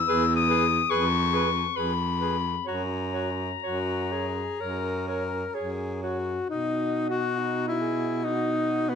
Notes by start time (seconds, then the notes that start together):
Already playing: E6
0.08 E2 G#4 B4
0.36 D#6
0.49 G#4 B4
0.90 F2 G#4 B4 C#6
1.33 G#4 B4
1.76 F2 G#4 B4 B5
2.20 G#4 B4
2.66 F#2 F#4 C#5 A#5
3.13 F#4 C#5
3.62 F#2 F#4 C#5
4.10 G#4 C#5
4.60 F#2 A#4 C#5
5.07 A#4 C#5
5.54 F#2 G#4 C#5
6.02 F#4 C#5
6.48 B2 D#4 F#4 D#5
7.09 F#4
7.38 D#4
7.68 E4
7.80 G#4
8.22 D#4 F#4
8.89 B3